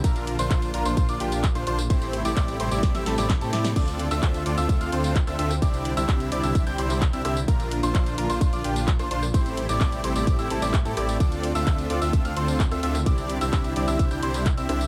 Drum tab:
CC |----------------|----------------|x---------------|----------------|
HH |xxoxxxoxxxoxxxo-|xxoxxxoxxxoxxxox|xxoxxxoxxxoxxxo-|xxoxxxoxxxoxxxo-|
TB |xx-xxx-xxx-xxx-x|xx-xxx-xxx-xxx-x|xx-xxx-xxx-xxx-x|xx-xxx-xxx-xxx-x|
CP |----x-------x---|----x-------x---|----x-------x---|----x------xx---|
SD |-------------r-r|--r-----ooooo-oo|-------------r-r|--------------r-|
BD |o---o---o---o---|o---o---o---o---|o---o---o---o---|o---o---o---o---|

CC |----------------|----------------|----------------|----------------|
HH |xxoxxxoxxxoxxxo-|xxoxxxoxxxoxxxox|xxoxxxoxxxoxxxo-|xxoxxxoxxxoxxxo-|
TB |xx-xxx-xxx-xxx-x|xx-xxx-xxx-xxx-x|xx-xxx-xxx-xxx-x|xx-xxx-xxx-xxx-x|
CP |----x-------x---|----x------xx---|----x-------x---|----x------xx---|
SD |-------------r-r|--------------r-|-------------r-r|--------------r-|
BD |o---o---o---o---|o---o---o---o---|o---o---o---o---|o---o---o---o---|